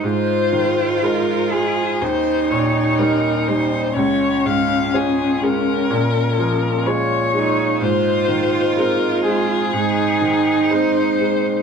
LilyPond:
<<
  \new Staff \with { instrumentName = "Violin" } { \time 4/4 \key aes \major \tempo 4 = 62 c''4 bes'8 aes'8 c''8 des''8 bes'8 c''8 | des''8 f''8 aes'8 bes'4. des''4 | c''4 bes'8 aes'4. c''4 | }
  \new Staff \with { instrumentName = "Cello" } { \time 4/4 \key aes \major f'2 ees'2 | des'2. r8 ees'8 | f'2 ees'2 | }
  \new Staff \with { instrumentName = "Harmonium" } { \time 4/4 \key aes \major << { c''2 des'2~ | des'1 | c''1 | } \\ { ees'1 | f'1 | ees'1 | } >> }
  \new Staff \with { instrumentName = "Harmonium" } { \clef bass \time 4/4 \key aes \major aes2 g2 | aes1 | aes1 | }
  \new Staff \with { instrumentName = "Grand piano" } { \clef bass \time 4/4 \key aes \major aes,8 ees8 <aes ees' c''>8 aes8 ees,8 bes,8 <g ees' des''>8 g8 | des,8 aes,8 <aes f' des''>8 aes8 bes,8 f8 <aes f' des''>8 aes8 | aes,8 ees8 <aes c' c''>8 aes8 aes,8 ees8 <aes c' c''>8 aes8 | }
>>